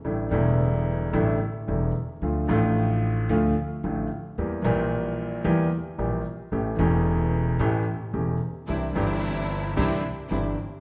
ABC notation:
X:1
M:4/4
L:1/8
Q:1/4=111
K:Aphr
V:1 name="String section"
z8 | z8 | z8 | z8 |
[CDE] [CDE]3 [CDE] z [CDE] z |]
V:2 name="Grand piano" clef=bass
[A,,,A,,D,G,A,E] [E,,,E,,D,G,A,E]3 [A,,,A,,D,G,A,E] z [E,,,E,,D,G,A,E] z | [D,,D,F,A,F] [A,,,A,,D,F,A,F]3 [D,,D,F,A,F] z [A,,,A,,D,F,A,F] z | [E,,E,G,B,G] [B,,,B,,E,G,B,G]3 [E,,E,G,B,G] z [B,,,B,,E,G,B,G] z | [A,,,A,,E,A,^CG] [E,,,E,,E,A,CG]3 [A,,,A,,E,A,CG] z [E,,,E,,E,A,CG] z |
[C,,C,E,CDG] [G,,,G,,E,CDG]3 [C,,C,E,CDG] z [G,,,G,,E,CDG] z |]
V:3 name="Upright bass" clef=bass
A,,, E,,,3 A,,, z E,,, z | D,, A,,,3 D,, z A,,, z | E,, B,,,3 E,, z B,,, z | A,,, E,,,3 A,,, z E,,, z |
C,, G,,,3 C,, z G,,, z |]